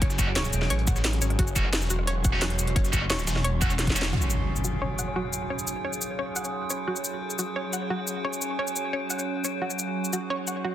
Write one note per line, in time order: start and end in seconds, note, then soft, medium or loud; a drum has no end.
0.00 0.52 F#1 loud
0.00 4.09 F#3 medium
0.00 4.09 C#4 medium
0.00 1.38 G#4 medium
0.00 0.06 C#5 loud
0.00 kick loud
0.00 closed hi-hat medium
0.10 snare soft
0.10 closed hi-hat soft
0.10 cabasa soft
0.19 0.28 A3 medium
0.19 0.28 C#4 medium
0.19 0.28 F#4 medium
0.19 kick medium
0.19 closed hi-hat medium
0.19 cabasa medium
0.27 cross-stick soft
0.36 0.44 C#5 loud
0.36 snare loud
0.36 closed hi-hat medium
0.45 snare soft
0.45 cabasa soft
0.53 0.69 E1 medium
0.53 closed hi-hat medium
0.53 cabasa medium
0.62 cross-stick soft
0.62 snare soft
0.70 1.20 A1 medium
0.70 0.78 C#5 loud
0.70 closed hi-hat medium
0.79 closed hi-hat soft
0.87 0.95 F#5 medium
0.87 kick loud
0.87 closed hi-hat medium
0.87 cabasa medium
0.96 snare soft
0.96 cabasa soft
1.04 snare loud
1.04 closed hi-hat medium
1.13 closed hi-hat soft
1.22 1.37 G#1 medium
1.22 1.30 C#5 medium
1.22 snare soft
1.22 closed hi-hat medium
1.22 cabasa medium
1.30 cross-stick soft
1.30 closed hi-hat soft
1.39 1.89 F#1 loud
1.39 1.51 F#4 medium
1.39 4.12 F#4 loud
1.39 kick loud
1.39 closed hi-hat medium
1.47 cabasa soft
1.56 1.65 A3 medium
1.56 1.65 C#4 medium
1.56 1.65 F#4 medium
1.56 kick medium
1.56 closed hi-hat medium
1.56 cabasa medium
1.65 cross-stick soft
1.73 snare loud
1.73 closed hi-hat loud
1.73 open hi-hat medium
1.82 snare soft
1.82 cabasa soft
1.90 2.75 E1 medium
1.90 1.98 F#4 medium
1.90 closed hi-hat medium
1.90 cabasa medium
1.99 cross-stick soft
2.07 2.15 C#5 loud
2.07 closed hi-hat medium
2.07 closed hi-hat loud
2.25 2.32 F#5 medium
2.25 kick loud
2.25 closed hi-hat medium
2.25 cabasa medium
2.33 2.42 A3 medium
2.33 2.42 C#4 medium
2.33 2.42 F#4 medium
2.33 snare soft
2.42 2.46 F#4 loud
2.42 snare loud
2.42 closed hi-hat medium
2.50 closed hi-hat soft
2.59 closed hi-hat medium
2.59 cabasa medium
2.67 closed hi-hat soft
2.76 3.26 F#1 loud
2.76 2.81 C#5 loud
2.76 kick loud
2.76 closed hi-hat medium
2.84 snare soft
2.84 closed hi-hat soft
2.84 cabasa soft
2.93 3.02 A3 medium
2.93 3.02 C#4 medium
2.93 3.02 F#4 medium
2.93 kick medium
2.93 closed hi-hat medium
2.93 cabasa medium
3.02 cross-stick soft
3.10 3.18 C#5 loud
3.10 snare loud
3.10 closed hi-hat medium
3.10 closed hi-hat loud
3.19 snare soft
3.19 cabasa soft
3.27 3.43 E1 medium
3.27 snare loud
3.27 closed hi-hat medium
3.27 open hi-hat medium
3.27 cabasa medium
3.36 cross-stick soft
3.36 snare soft
3.44 4.12 E1 loud
3.44 3.52 C#5 loud
3.44 closed hi-hat medium
3.44 closed hi-hat loud
3.61 3.71 A3 medium
3.61 3.70 C#4 medium
3.61 3.70 F#4 medium
3.61 3.70 F#5 medium
3.61 kick loud
3.61 closed hi-hat medium
3.61 cabasa medium
3.70 closed hi-hat medium
3.70 cabasa soft
3.79 snare medium
3.79 closed hi-hat medium
3.87 kick medium
3.87 snare medium
3.87 closed hi-hat medium
3.87 closed hi-hat soft
3.96 4.05 A3 medium
3.96 4.05 C#4 medium
3.96 4.05 F#4 loud
3.96 4.04 C#5 medium
3.96 snare loud
3.96 closed hi-hat medium
3.96 open hi-hat medium
3.96 cabasa medium
4.02 snare medium
4.04 snare loud
4.04 closed hi-hat soft
4.04 open hi-hat medium
4.13 10.75 F#3 medium
4.13 10.75 C#4 medium
4.13 4.25 F#4 medium
4.13 9.58 G#4 medium
4.13 impact medium
4.22 cabasa soft
4.30 cabasa medium
4.56 cabasa soft
4.64 4.72 F#4 medium
4.64 cabasa medium
4.82 4.90 C#5 medium
4.99 5.07 F#5 medium
4.99 cabasa medium
5.16 5.21 F#4 loud
5.33 cabasa medium
5.50 5.55 C#5 loud
5.59 cabasa soft
5.67 cabasa medium
5.85 5.92 C#5 loud
5.93 cabasa soft
6.02 cabasa medium
6.19 6.27 C#5 loud
6.36 6.44 F#5 medium
6.36 cabasa medium
6.45 cabasa soft
6.70 6.78 C#5 medium
6.70 cabasa medium
6.87 6.99 F#4 medium
6.96 cabasa soft
7.05 cabasa medium
7.30 cabasa soft
7.39 7.47 F#4 medium
7.39 cabasa medium
7.56 7.64 C#5 loud
7.73 7.81 F#5 medium
7.73 cabasa medium
7.90 7.95 F#4 medium
8.08 cabasa medium
8.25 8.29 C#5 loud
8.33 cabasa soft
8.42 cabasa medium
8.59 8.67 C#5 loud
8.67 cabasa soft
8.76 cabasa medium
8.93 9.01 C#5 loud
9.10 9.18 F#5 medium
9.10 cabasa medium
9.19 cabasa soft
9.45 9.52 C#5 medium
9.45 cabasa medium
9.62 9.73 F#4 medium
9.62 10.75 F#4 medium
9.70 cabasa soft
9.79 cabasa medium
10.05 cabasa soft
10.13 10.21 F#4 medium
10.13 cabasa medium
10.30 10.38 C#5 loud
10.47 10.55 F#5 medium
10.47 cabasa medium
10.64 10.69 F#4 loud